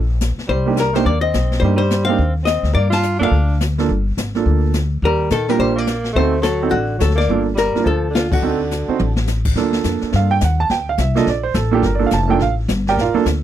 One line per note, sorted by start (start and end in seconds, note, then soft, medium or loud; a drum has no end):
0.00 0.34 A#1 medium
0.21 snare medium
0.21 hi-hat pedal medium
0.38 muted upright bass stroke soft
0.38 snare soft
0.48 1.03 C2 medium
0.48 0.75 G3 medium
0.48 0.78 C5 medium
0.48 brush sweep soft
0.48 kick soft
0.66 0.76 A#3 medium
0.66 0.76 D4 medium
0.66 0.76 D#4 medium
0.66 0.77 G4 medium
0.76 0.92 G3 medium
0.76 snare medium
0.76 hi-hat pedal medium
0.80 0.95 A#4 medium
0.93 1.03 A3 medium
0.93 1.05 A#3 medium
0.93 1.05 D4 medium
0.93 1.05 D#4 medium
0.93 1.05 G4 medium
0.93 1.05 C5 medium
0.93 snare soft
1.04 1.32 D#2 medium
1.04 1.20 A#3 medium
1.04 1.21 D5 medium
1.04 brush sweep soft
1.04 kick soft
1.21 1.58 C4 medium
1.21 1.59 D#5 medium
1.34 1.60 B1 medium
1.34 snare medium
1.34 hi-hat pedal soft
1.52 snare soft
1.60 2.16 G2 medium
1.60 1.75 G3 medium
1.60 1.78 A#3 medium
1.60 1.78 D4 soft
1.60 1.77 C5 medium
1.60 brush sweep soft
1.60 kick soft
1.64 1.79 D#4 soft
1.64 1.79 G4 medium
1.76 2.04 G3 medium
1.76 2.08 C5 medium
1.90 snare medium
1.90 hi-hat pedal medium
2.05 2.18 A#3 medium
2.05 2.33 C4 medium
2.05 2.18 D4 medium
2.05 2.33 F5 medium
2.09 2.19 D#4 medium
2.09 2.19 G4 medium
2.19 2.61 D#2 medium
2.19 brush sweep soft
2.19 kick soft
2.43 2.72 C4 medium
2.43 2.74 D#5 medium
2.43 snare medium
2.43 hi-hat pedal medium
2.63 2.74 D2 medium
2.63 snare soft
2.73 3.18 G2 medium
2.73 2.89 A#3 medium
2.73 2.91 D5 medium
2.73 brush sweep soft
2.73 kick soft
2.90 3.18 F4 medium
2.90 3.20 A5 loud
2.90 snare medium
2.90 ride medium
3.03 hi-hat pedal medium
3.19 3.31 F#2 medium
3.19 3.31 A#3 medium
3.19 3.57 D4 medium
3.19 3.31 D4 medium
3.19 3.31 F4 medium
3.19 3.31 A4 medium
3.19 3.59 F5 medium
3.31 3.86 D2 medium
3.31 brush sweep soft
3.31 kick soft
3.60 snare medium
3.60 hi-hat pedal medium
3.78 3.88 A#3 medium
3.78 3.88 D4 medium
3.78 3.89 F4 medium
3.78 3.89 A4 medium
3.78 snare soft
3.89 4.15 G1 medium
3.89 brush sweep soft
3.89 kick soft
4.17 4.44 G#1 medium
4.17 snare medium
4.17 hi-hat pedal soft
4.35 4.72 A#3 medium
4.35 4.73 D4 medium
4.35 4.73 F4 soft
4.35 4.73 A4 medium
4.35 snare soft
4.46 5.00 D2 medium
4.46 brush sweep soft
4.46 kick soft
4.74 snare medium
4.74 hi-hat pedal soft
5.02 5.29 D#2 medium
5.02 5.30 G3 medium
5.02 5.32 A#4 medium
5.02 brush sweep soft
5.02 kick soft
5.30 5.57 A#2 medium
5.30 5.50 D#3 medium
5.30 5.50 A4 medium
5.30 snare medium
5.30 hi-hat pedal medium
5.48 5.58 G3 medium
5.48 5.86 A#3 medium
5.48 5.86 D4 medium
5.48 5.86 F4 medium
5.48 5.86 G4 medium
5.48 5.60 A#4 medium
5.48 snare soft
5.59 6.13 A#1 medium
5.59 5.77 G3 medium
5.59 5.78 C5 medium
5.59 brush sweep soft
5.59 kick soft
5.75 6.12 A#3 medium
5.75 6.16 D5 medium
5.87 snare medium
5.87 hi-hat pedal medium
6.04 snare soft
6.13 6.69 D2 medium
6.13 6.41 A3 medium
6.13 6.45 C5 medium
6.13 brush sweep soft
6.13 kick soft
6.17 6.32 C4 medium
6.17 6.32 D#4 medium
6.17 6.32 F#4 medium
6.17 6.32 A4 medium
6.42 6.69 F#3 medium
6.42 6.73 A4 medium
6.42 snare medium
6.42 hi-hat pedal medium
6.62 6.72 C4 medium
6.62 6.72 D#4 medium
6.62 6.72 F#4 medium
6.62 6.72 A4 medium
6.71 6.99 A1 medium
6.71 6.98 D3 medium
6.71 6.98 F#4 medium
6.71 brush sweep soft
6.71 kick soft
6.99 7.27 D2 medium
6.99 7.15 F#3 medium
6.99 7.17 A4 medium
6.99 snare medium
6.99 hi-hat pedal medium
7.10 snare soft
7.15 7.43 A#3 medium
7.15 7.44 D5 medium
7.20 snare soft
7.29 7.72 G1 medium
7.29 7.45 A#3 medium
7.29 7.45 D4 medium
7.29 7.45 F4 medium
7.29 7.46 A4 medium
7.29 brush sweep soft
7.29 kick soft
7.55 7.83 G3 medium
7.55 7.86 A#4 medium
7.55 snare medium
7.55 hi-hat pedal medium
7.75 7.85 A#3 medium
7.75 7.85 D4 medium
7.75 7.85 F4 medium
7.75 7.86 A#4 medium
7.75 muted upright bass stroke soft
7.75 snare soft
7.83 8.40 D2 medium
7.83 8.09 F3 medium
7.83 8.16 A4 medium
7.83 brush sweep soft
7.83 kick soft
8.10 8.28 D3 medium
8.15 8.32 F4 medium
8.15 snare medium
8.15 hi-hat pedal medium
8.30 9.23 D3 medium
8.30 9.25 F#4 medium
8.30 kick medium
8.30 ride medium
8.42 8.85 D2 medium
8.42 8.58 C4 medium
8.42 8.58 D#4 medium
8.42 8.59 F#4 medium
8.42 8.59 A4 medium
8.42 brush sweep soft
8.71 snare medium
8.71 hi-hat pedal medium
8.88 8.98 C4 medium
8.88 8.98 D#4 soft
8.88 8.98 F#4 medium
8.88 8.99 C5 medium
8.88 muted upright bass stroke soft
8.99 9.53 A1 medium
8.99 mid tom soft
9.16 snare medium
9.27 snare medium
9.27 hi-hat pedal medium
9.45 kick medium
9.45 crash medium
9.56 9.83 D2 medium
9.56 10.35 A#3 medium
9.56 10.35 D4 medium
9.56 10.35 F4 medium
9.56 10.35 A4 medium
9.56 brush sweep soft
9.56 kick soft
9.56 snare soft
9.73 snare soft
9.84 10.01 F2 medium
9.84 kick soft
9.84 snare medium
9.84 hi-hat pedal medium
10.01 muted upright bass stroke soft
10.01 snare soft
10.12 10.41 G2 medium
10.12 10.31 F5 medium
10.12 brush sweep soft
10.12 kick soft
10.12 snare soft
10.31 10.41 G5 loud
10.41 10.69 D#2 medium
10.41 10.60 F#5 medium
10.41 kick soft
10.41 snare medium
10.41 hi-hat pedal medium
10.60 10.70 A5 loud
10.70 10.97 D2 medium
10.70 10.87 G5 medium
10.70 brush sweep soft
10.70 kick soft
10.70 snare soft
10.89 10.99 F5 medium
10.98 11.25 C2 medium
10.98 11.16 E5 medium
10.98 kick soft
10.98 snare medium
10.98 hi-hat pedal medium
11.15 11.25 A#3 medium
11.15 11.25 D4 medium
11.15 11.26 F4 medium
11.15 11.26 A4 medium
11.15 11.27 D#5 medium
11.15 snare soft
11.26 11.54 A#1 medium
11.26 11.45 D5 medium
11.26 brush sweep soft
11.26 kick soft
11.26 snare soft
11.43 11.54 C5 medium
11.54 11.82 A1 medium
11.54 11.71 A4 medium
11.54 kick soft
11.54 snare medium
11.54 hi-hat pedal medium
11.71 11.82 A#3 medium
11.71 11.82 D4 medium
11.71 11.82 F4 medium
11.71 11.84 G4 medium
11.71 11.82 A4 medium
11.82 12.10 G1 medium
11.82 11.93 A#4 medium
11.82 brush sweep soft
11.82 kick soft
11.82 snare soft
11.95 12.09 A#3 medium
11.95 12.10 D4 medium
11.95 12.03 D5 medium
11.99 12.10 F4 medium
11.99 12.10 A4 medium
12.07 12.14 F5 medium
12.11 12.39 F1 medium
12.11 12.29 A5 medium
12.11 kick soft
12.11 snare medium
12.11 hi-hat pedal medium
12.28 12.38 A#3 medium
12.28 12.39 D4 medium
12.28 12.39 F4 medium
12.28 12.39 A4 medium
12.28 12.41 G5 medium
12.39 12.67 A1 medium
12.39 12.52 F5 medium
12.39 brush sweep soft
12.39 kick soft
12.39 snare soft
12.68 12.96 G1 medium
12.68 kick soft
12.68 snare medium
12.68 hi-hat pedal medium
12.87 12.98 G4 medium
12.87 12.98 A#4 medium
12.87 12.98 D5 medium
12.87 12.98 G5 medium
12.87 snare soft
12.97 13.13 A#1 medium
12.97 13.15 A#4 medium
12.97 13.16 D5 medium
12.97 13.16 F5 medium
12.97 brush sweep medium
12.97 kick soft
12.97 snare soft
13.02 13.13 F4 medium
13.14 13.24 A#3 medium
13.14 13.24 D4 medium
13.14 13.24 F4 medium
13.14 13.25 A4 medium
13.14 muted upright bass stroke soft
13.26 13.43 D2 medium
13.26 kick soft
13.26 snare medium
13.26 hi-hat pedal medium